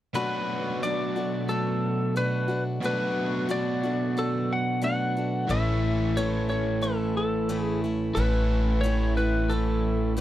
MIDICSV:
0, 0, Header, 1, 5, 480
1, 0, Start_track
1, 0, Tempo, 668151
1, 105, Time_signature, 4, 2, 24, 8
1, 7333, End_track
2, 0, Start_track
2, 0, Title_t, "Electric slide guitar"
2, 0, Program_c, 0, 29
2, 111, Note_on_c, 0, 71, 62
2, 594, Note_off_c, 0, 71, 0
2, 597, Note_on_c, 0, 74, 69
2, 1071, Note_on_c, 0, 69, 64
2, 1085, Note_off_c, 0, 74, 0
2, 1557, Note_off_c, 0, 69, 0
2, 1560, Note_on_c, 0, 71, 67
2, 1888, Note_off_c, 0, 71, 0
2, 2051, Note_on_c, 0, 71, 69
2, 2489, Note_off_c, 0, 71, 0
2, 2523, Note_on_c, 0, 74, 74
2, 3008, Note_off_c, 0, 74, 0
2, 3008, Note_on_c, 0, 69, 72
2, 3243, Note_off_c, 0, 69, 0
2, 3252, Note_on_c, 0, 78, 80
2, 3469, Note_off_c, 0, 78, 0
2, 3478, Note_on_c, 0, 78, 81
2, 3956, Note_on_c, 0, 76, 81
2, 3965, Note_off_c, 0, 78, 0
2, 4432, Note_on_c, 0, 73, 76
2, 4444, Note_off_c, 0, 76, 0
2, 4658, Note_off_c, 0, 73, 0
2, 4666, Note_on_c, 0, 73, 72
2, 4903, Note_on_c, 0, 69, 70
2, 4912, Note_off_c, 0, 73, 0
2, 5143, Note_off_c, 0, 69, 0
2, 5152, Note_on_c, 0, 69, 64
2, 5468, Note_off_c, 0, 69, 0
2, 5468, Note_on_c, 0, 68, 64
2, 5599, Note_off_c, 0, 68, 0
2, 5854, Note_on_c, 0, 71, 72
2, 6328, Note_on_c, 0, 73, 91
2, 6353, Note_off_c, 0, 71, 0
2, 6558, Note_off_c, 0, 73, 0
2, 6588, Note_on_c, 0, 71, 75
2, 6821, Note_on_c, 0, 69, 67
2, 6833, Note_off_c, 0, 71, 0
2, 7274, Note_off_c, 0, 69, 0
2, 7333, End_track
3, 0, Start_track
3, 0, Title_t, "Overdriven electric guitar"
3, 0, Program_c, 1, 29
3, 108, Note_on_c, 1, 59, 74
3, 2012, Note_off_c, 1, 59, 0
3, 2025, Note_on_c, 1, 59, 69
3, 3929, Note_off_c, 1, 59, 0
3, 3953, Note_on_c, 1, 69, 77
3, 5872, Note_off_c, 1, 69, 0
3, 5875, Note_on_c, 1, 69, 79
3, 7333, Note_off_c, 1, 69, 0
3, 7333, End_track
4, 0, Start_track
4, 0, Title_t, "Steel-string acoustic guitar"
4, 0, Program_c, 2, 25
4, 104, Note_on_c, 2, 47, 56
4, 107, Note_on_c, 2, 54, 54
4, 109, Note_on_c, 2, 57, 65
4, 109, Note_on_c, 2, 62, 61
4, 118, Note_on_c, 2, 66, 64
4, 584, Note_off_c, 2, 47, 0
4, 586, Note_off_c, 2, 54, 0
4, 587, Note_off_c, 2, 62, 0
4, 592, Note_off_c, 2, 66, 0
4, 595, Note_on_c, 2, 47, 58
4, 598, Note_on_c, 2, 54, 61
4, 599, Note_off_c, 2, 57, 0
4, 601, Note_on_c, 2, 62, 63
4, 602, Note_on_c, 2, 57, 62
4, 608, Note_on_c, 2, 66, 62
4, 824, Note_off_c, 2, 66, 0
4, 830, Note_off_c, 2, 47, 0
4, 830, Note_off_c, 2, 62, 0
4, 831, Note_off_c, 2, 54, 0
4, 832, Note_on_c, 2, 66, 43
4, 833, Note_off_c, 2, 57, 0
4, 839, Note_on_c, 2, 62, 36
4, 845, Note_on_c, 2, 57, 32
4, 1066, Note_off_c, 2, 57, 0
4, 1067, Note_on_c, 2, 54, 49
4, 1069, Note_off_c, 2, 66, 0
4, 1072, Note_off_c, 2, 62, 0
4, 1075, Note_on_c, 2, 57, 49
4, 1080, Note_on_c, 2, 62, 55
4, 1086, Note_on_c, 2, 66, 54
4, 1546, Note_off_c, 2, 54, 0
4, 1550, Note_off_c, 2, 66, 0
4, 1550, Note_on_c, 2, 47, 57
4, 1552, Note_off_c, 2, 57, 0
4, 1552, Note_off_c, 2, 62, 0
4, 1555, Note_on_c, 2, 57, 68
4, 1557, Note_on_c, 2, 54, 56
4, 1558, Note_on_c, 2, 66, 70
4, 1561, Note_on_c, 2, 62, 65
4, 1773, Note_off_c, 2, 66, 0
4, 1781, Note_on_c, 2, 66, 43
4, 1783, Note_off_c, 2, 62, 0
4, 1787, Note_off_c, 2, 47, 0
4, 1790, Note_off_c, 2, 57, 0
4, 1791, Note_off_c, 2, 54, 0
4, 1791, Note_on_c, 2, 62, 41
4, 1803, Note_on_c, 2, 57, 35
4, 2023, Note_off_c, 2, 66, 0
4, 2028, Note_off_c, 2, 62, 0
4, 2031, Note_on_c, 2, 47, 58
4, 2034, Note_off_c, 2, 57, 0
4, 2041, Note_on_c, 2, 54, 62
4, 2042, Note_on_c, 2, 57, 63
4, 2043, Note_on_c, 2, 62, 69
4, 2045, Note_on_c, 2, 66, 67
4, 2496, Note_off_c, 2, 47, 0
4, 2502, Note_off_c, 2, 54, 0
4, 2505, Note_on_c, 2, 47, 64
4, 2509, Note_off_c, 2, 62, 0
4, 2509, Note_off_c, 2, 66, 0
4, 2511, Note_on_c, 2, 54, 65
4, 2513, Note_off_c, 2, 57, 0
4, 2515, Note_on_c, 2, 57, 67
4, 2518, Note_on_c, 2, 62, 69
4, 2518, Note_on_c, 2, 66, 70
4, 2745, Note_off_c, 2, 47, 0
4, 2746, Note_off_c, 2, 66, 0
4, 2747, Note_off_c, 2, 54, 0
4, 2750, Note_off_c, 2, 57, 0
4, 2751, Note_off_c, 2, 62, 0
4, 2754, Note_on_c, 2, 66, 45
4, 2763, Note_on_c, 2, 62, 37
4, 2769, Note_on_c, 2, 57, 33
4, 2989, Note_off_c, 2, 66, 0
4, 2991, Note_off_c, 2, 57, 0
4, 2994, Note_off_c, 2, 62, 0
4, 2994, Note_on_c, 2, 54, 48
4, 3000, Note_on_c, 2, 57, 51
4, 3005, Note_on_c, 2, 62, 54
4, 3009, Note_on_c, 2, 66, 56
4, 3453, Note_off_c, 2, 54, 0
4, 3459, Note_on_c, 2, 47, 65
4, 3461, Note_off_c, 2, 62, 0
4, 3462, Note_on_c, 2, 54, 61
4, 3464, Note_off_c, 2, 57, 0
4, 3467, Note_off_c, 2, 66, 0
4, 3467, Note_on_c, 2, 57, 66
4, 3470, Note_on_c, 2, 62, 72
4, 3475, Note_on_c, 2, 66, 65
4, 3701, Note_off_c, 2, 47, 0
4, 3702, Note_off_c, 2, 66, 0
4, 3703, Note_off_c, 2, 54, 0
4, 3705, Note_off_c, 2, 57, 0
4, 3705, Note_off_c, 2, 62, 0
4, 3711, Note_on_c, 2, 66, 44
4, 3713, Note_on_c, 2, 62, 42
4, 3724, Note_on_c, 2, 57, 34
4, 3942, Note_off_c, 2, 57, 0
4, 3945, Note_on_c, 2, 45, 65
4, 3947, Note_off_c, 2, 66, 0
4, 3948, Note_off_c, 2, 62, 0
4, 3951, Note_on_c, 2, 52, 62
4, 3951, Note_on_c, 2, 57, 62
4, 3954, Note_on_c, 2, 64, 67
4, 3955, Note_on_c, 2, 61, 59
4, 4424, Note_off_c, 2, 45, 0
4, 4425, Note_off_c, 2, 52, 0
4, 4429, Note_off_c, 2, 61, 0
4, 4429, Note_off_c, 2, 64, 0
4, 4431, Note_on_c, 2, 45, 66
4, 4433, Note_off_c, 2, 57, 0
4, 4434, Note_on_c, 2, 52, 72
4, 4435, Note_on_c, 2, 57, 69
4, 4440, Note_on_c, 2, 64, 70
4, 4442, Note_on_c, 2, 61, 69
4, 4652, Note_off_c, 2, 64, 0
4, 4661, Note_on_c, 2, 64, 41
4, 4662, Note_off_c, 2, 61, 0
4, 4667, Note_off_c, 2, 45, 0
4, 4668, Note_off_c, 2, 52, 0
4, 4669, Note_off_c, 2, 57, 0
4, 4671, Note_on_c, 2, 61, 40
4, 4680, Note_on_c, 2, 57, 41
4, 4896, Note_off_c, 2, 57, 0
4, 4896, Note_on_c, 2, 52, 53
4, 4902, Note_off_c, 2, 64, 0
4, 4903, Note_off_c, 2, 61, 0
4, 4904, Note_on_c, 2, 57, 50
4, 4911, Note_on_c, 2, 64, 59
4, 4912, Note_on_c, 2, 61, 55
4, 5376, Note_off_c, 2, 52, 0
4, 5377, Note_off_c, 2, 61, 0
4, 5380, Note_off_c, 2, 57, 0
4, 5380, Note_on_c, 2, 45, 66
4, 5382, Note_on_c, 2, 57, 74
4, 5383, Note_off_c, 2, 64, 0
4, 5385, Note_on_c, 2, 52, 70
4, 5385, Note_on_c, 2, 61, 68
4, 5392, Note_on_c, 2, 64, 75
4, 5622, Note_off_c, 2, 45, 0
4, 5622, Note_off_c, 2, 64, 0
4, 5623, Note_off_c, 2, 57, 0
4, 5624, Note_off_c, 2, 52, 0
4, 5624, Note_off_c, 2, 61, 0
4, 5631, Note_on_c, 2, 64, 43
4, 5634, Note_on_c, 2, 61, 39
4, 5643, Note_on_c, 2, 57, 34
4, 5860, Note_off_c, 2, 57, 0
4, 5862, Note_on_c, 2, 45, 58
4, 5864, Note_off_c, 2, 61, 0
4, 5867, Note_off_c, 2, 64, 0
4, 5867, Note_on_c, 2, 52, 63
4, 5869, Note_on_c, 2, 57, 59
4, 5873, Note_on_c, 2, 61, 71
4, 5875, Note_on_c, 2, 64, 62
4, 6338, Note_off_c, 2, 45, 0
4, 6341, Note_off_c, 2, 52, 0
4, 6344, Note_off_c, 2, 57, 0
4, 6347, Note_on_c, 2, 45, 60
4, 6348, Note_off_c, 2, 61, 0
4, 6349, Note_off_c, 2, 64, 0
4, 6349, Note_on_c, 2, 52, 62
4, 6353, Note_on_c, 2, 57, 67
4, 6358, Note_on_c, 2, 61, 68
4, 6363, Note_on_c, 2, 64, 74
4, 6580, Note_off_c, 2, 64, 0
4, 6585, Note_off_c, 2, 45, 0
4, 6585, Note_off_c, 2, 61, 0
4, 6586, Note_off_c, 2, 52, 0
4, 6588, Note_off_c, 2, 57, 0
4, 6588, Note_on_c, 2, 64, 44
4, 6594, Note_on_c, 2, 61, 39
4, 6603, Note_on_c, 2, 57, 35
4, 6821, Note_on_c, 2, 52, 50
4, 6822, Note_off_c, 2, 57, 0
4, 6823, Note_off_c, 2, 61, 0
4, 6826, Note_off_c, 2, 64, 0
4, 6830, Note_on_c, 2, 57, 51
4, 6831, Note_on_c, 2, 61, 55
4, 6839, Note_on_c, 2, 64, 63
4, 7301, Note_off_c, 2, 52, 0
4, 7302, Note_off_c, 2, 57, 0
4, 7304, Note_on_c, 2, 45, 65
4, 7305, Note_off_c, 2, 64, 0
4, 7308, Note_off_c, 2, 61, 0
4, 7309, Note_on_c, 2, 52, 68
4, 7310, Note_on_c, 2, 57, 76
4, 7333, Note_off_c, 2, 45, 0
4, 7333, Note_off_c, 2, 52, 0
4, 7333, Note_off_c, 2, 57, 0
4, 7333, End_track
5, 0, Start_track
5, 0, Title_t, "Upright bass"
5, 0, Program_c, 3, 32
5, 3943, Note_on_c, 3, 33, 74
5, 5834, Note_off_c, 3, 33, 0
5, 5865, Note_on_c, 3, 33, 71
5, 7333, Note_off_c, 3, 33, 0
5, 7333, End_track
0, 0, End_of_file